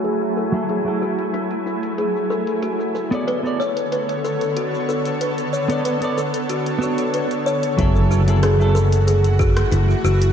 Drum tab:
HH |x--xx--xxx-xx--x|x--xx--xxx-xx--x|xx-xxx-xxx-xxx-x|x--xx--xxx-xx--x|
SH |xxxxxxxxxxxxxxxx|xxxxxxxxxxxxxxxx|xxxxxxxxxxxxxxxx|xxxxxxxxxxxxxxxx|
SD |----------------|----------------|----------------|----r------r----|
BD |----------------|----------------|----------------|o---------o-----|